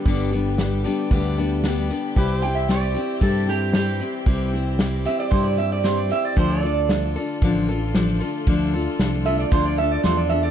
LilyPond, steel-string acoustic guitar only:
\new Staff \with { instrumentName = "Steel-string acoustic guitar" } { \time 4/4 \key c \major \tempo 4 = 114 <g, d g b d' g'>8 <g b d' g'>8 <g b d' g'>8 <g b d' g'>8 <g, d g b d' g'>8 <g b d' g'>8 <g b d' g'>8 <g b d' g'>8 | <c g c' e' g'>8 <c' e' g'>8 <g c' e' g'>8 <c' e' g'>8 <c g c' e' g'>8 <c' e' g'>8 <g c' e' g'>8 <c' e' g'>8 | <c g c' e' g'>8 <c' e' g'>8 <g c' e' g'>8 <c' e' g'>8 <c g c' e' g'>8 <c' e' g'>8 <g c' e' g'>8 <c' e' g'>8 | <d f d' f' a'>8 <d' f' a'>8 <f d' f' a'>8 <d' f' a'>8 <d f d' f' a'>8 <d' f' a'>8 <f d' f' a'>8 <d' f' a'>8 |
<d f d' f' a'>8 <d' f' a'>8 <f d' f' a'>8 <d' f' a'>8 <d f d' f' a'>8 <d' f' a'>8 <f d' f' a'>8 <d' f' a'>8 | }